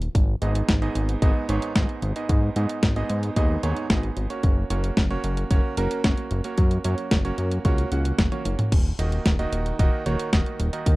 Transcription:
0.02 closed hi-hat
0.15 G#1, kick, closed hi-hat
0.42 G#1 G#2 B3 D#4 G#4 D#5, closed hi-hat
0.55 closed hi-hat
0.69 G#1, kick, snare, closed hi-hat
0.82 G#2 B3 D#4 G#4 D#5, closed hi-hat
0.95 G#1, closed hi-hat
1.09 closed hi-hat
1.22 G#1 G#2 B3 D#4 G#4 D#5, kick, closed hi-hat
1.49 G#1 G#2 B3 D#4 G#4 C#5, closed hi-hat
1.62 closed hi-hat
1.76 G#1 G#2 B3 D#4 G#4 D#5, kick, snare, closed hi-hat
1.89 closed hi-hat
2.02 G#1, closed hi-hat
2.16 G#2 B3 D#4 G#4 D#5, closed hi-hat
2.29 G#2, kick, closed hi-hat
2.56 G#2 B3 D#4 G#4 D#5, closed hi-hat
2.69 closed hi-hat
2.83 G#1, kick, snare, closed hi-hat
2.96 G#2 B3 D#4 G#4 D#5, closed hi-hat
3.10 G#2, closed hi-hat
3.23 closed hi-hat
3.36 D#2 G#2 B3 D#4 G#4 D#5, kick, closed hi-hat
3.63 D#2 G#2 B3 D#4 G#4 C#5, closed hi-hat
3.77 closed hi-hat
3.90 G#1 G#2 B3 D#4 G#4 D#5, kick, snare, closed hi-hat
4.03 closed hi-hat
4.17 G#1, closed hi-hat
4.30 A#3 C#4 F#4 C#5, closed hi-hat
4.43 F#1, kick, closed hi-hat
4.70 F#1 A#3 C#4 F#4 C#5, closed hi-hat
4.84 closed hi-hat
4.97 F#1, kick, snare, closed hi-hat
5.11 A#3 C#4 F#4 C#5, closed hi-hat
5.24 F#1, closed hi-hat
5.37 closed hi-hat
5.51 F#1 A#3 C#4 F#4 C#5, kick, closed hi-hat
5.77 F#1 A#3 C#4 F#4 A#4, closed hi-hat
5.91 closed hi-hat
6.04 F#1 A#3 C#4 F#4 C#5, kick, snare, closed hi-hat
6.17 closed hi-hat
6.31 F#1, closed hi-hat
6.44 A#3 C#4 F#4 C#5, closed hi-hat
6.58 F#2, kick, closed hi-hat
6.71 closed hi-hat
6.84 F#2 A#3 C#4 F#4 C#5, closed hi-hat
6.98 closed hi-hat
7.11 F#1, kick, snare, closed hi-hat
7.25 A#3 C#4 F#4 C#5, closed hi-hat
7.38 F#2, closed hi-hat
7.51 closed hi-hat
7.65 C#2 A#3 C#4 F#4 C#5, kick, closed hi-hat
7.78 closed hi-hat
7.92 C#2 A#3 C#4 F#4 F#5, closed hi-hat
8.05 closed hi-hat
8.18 F#1, kick, snare, closed hi-hat, high tom
8.32 A#3 C#4 F#4 C#5, closed hi-hat, high tom
8.45 F#1, closed hi-hat
8.59 closed hi-hat, mid tom
8.72 D#1, kick, closed hi-hat, crash
8.99 D#1 D#3 A#3 D#4 F#4 D#5, closed hi-hat
9.12 closed hi-hat
9.26 D#1, kick, snare, closed hi-hat
9.39 D#3 A#3 D#4 F#4 D#5, closed hi-hat
9.53 D#1, closed hi-hat
9.66 closed hi-hat
9.79 D#1 D#3 A#3 D#4 F#4 D#5, kick, closed hi-hat
10.06 D#1 D#3 A#3 D#4 F#4 C#5, closed hi-hat
10.19 closed hi-hat
10.33 D#1 D#3 A#3 D#4 F#4 D#5, kick, snare, closed hi-hat
10.46 closed hi-hat
10.60 D#1, closed hi-hat
10.73 D#3 A#3 D#4 F#4 D#5, closed hi-hat
10.86 D#2, kick, closed hi-hat

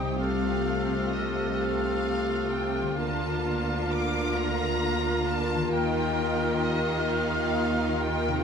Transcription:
Already playing: C2 C3 G3 C4 D#4 G4 C5 D#5 G5 C6 D#6
0.02 C3
0.06 G3
0.11 G4
0.16 A3 G4 F5
0.20 A3 F4 A4 F6
1.12 D#5
1.59 F5
2.51 G5
2.81 D3
2.85 A#3
2.90 F4
2.94 D2 D3 A#3 F4 F5
2.98 F4 A#4 A5
3.91 D6
4.35 A#5
5.27 A5
5.54 D#3
5.59 A#3
5.63 G4
5.68 D#2 D#3 F4 G4 D#5 F5 G5 F6
6.63 D#5
7.09 F5
7.99 G5
8.28 C3
8.32 C4
8.37 G4

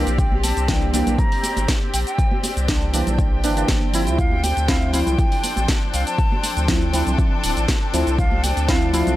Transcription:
Already playing: A#3 C4 D4 G4 D5
0.07 A#1, closed hi-hat, cabasa
0.18 C5 G5, kick, closed hi-hat, cabasa
0.32 high conga
0.44 A5, open hi-hat, muted conga, cabasa
0.57 C2, closed hi-hat, cabasa
0.68 E3 A#3 D4 G5, kick, snare, closed hi-hat, cabasa
0.93 E3 A#3 D4 G5, open hi-hat, muted conga, high conga, cabasa
1.06 A#1, closed hi-hat, low conga, cabasa
1.18 A#5, kick, closed hi-hat, cabasa
1.32 open hi-hat
1.42 G5, open hi-hat, muted conga, cabasa
1.57 G1, closed hi-hat, muted conga, cabasa
1.68 kick, snare, closed hi-hat, high conga, cabasa
1.93 A#1 G5, open hi-hat, cabasa
2.07 G5, closed hi-hat, cabasa
2.18 kick, closed hi-hat, cabasa
2.31 high conga
2.43 open hi-hat, muted conga, cabasa
2.57 C2, closed hi-hat, cabasa
2.68 E3 A#3 D4, kick, snare, closed hi-hat, cabasa
2.93 E3 A#3 D4, open hi-hat, muted conga, cabasa
3.07 A#1, closed hi-hat, low conga, cabasa
3.18 kick, closed hi-hat, cabasa
3.43 G1 E3 A#3 D4, open hi-hat, cabasa
3.56 E3 A#3 D4, closed hi-hat, cabasa
3.68 G1, kick, snare, closed hi-hat, high conga, cabasa
3.93 F3 C4 E4, open hi-hat, cabasa
4.07 D2, closed hi-hat, cabasa
4.18 F3 C4 D4 F5, kick, closed hi-hat, cabasa
4.31 A4, high conga
4.43 G5, open hi-hat, muted conga, cabasa
4.57 D2, closed hi-hat, cabasa
4.68 F3 C4 E4 F5, kick, snare, closed hi-hat, cabasa
4.93 F3 C4 E4 F5, open hi-hat, muted conga, cabasa
5.07 C2, closed hi-hat, low conga, cabasa
5.18 G5, kick, closed hi-hat, cabasa
5.32 open hi-hat
5.44 open hi-hat, muted conga, cabasa
5.56 A1, closed hi-hat, muted conga, cabasa
5.68 kick, snare, closed hi-hat, high conga, cabasa
5.94 C2 F5, open hi-hat, cabasa
6.07 A5, closed hi-hat, cabasa
6.18 kick, closed hi-hat, cabasa
6.32 high conga
6.43 open hi-hat, muted conga, cabasa
6.57 D2, closed hi-hat, cabasa
6.68 F3 C4 E4, kick, snare, closed hi-hat, cabasa
6.93 F3 C4 E4, open hi-hat, muted conga, high conga, cabasa
7.07 C2, closed hi-hat, low conga, cabasa
7.18 kick, closed hi-hat, cabasa
7.44 D1, open hi-hat, cabasa
7.57 A1, closed hi-hat, cabasa
7.68 kick, snare, closed hi-hat, high conga, cabasa
7.93 D2 F3 C4 E4, open hi-hat, cabasa
8.07 C2, closed hi-hat, cabasa
8.18 F5, kick, closed hi-hat, cabasa
8.31 high conga
8.43 G5, open hi-hat, muted conga, cabasa
8.57 D2, closed hi-hat, cabasa
8.68 F3 C4 E4 F5, kick, snare, closed hi-hat, cabasa
8.93 F3 C4 E4 F5, open hi-hat, muted conga, cabasa
9.07 C2, closed hi-hat, low conga, cabasa

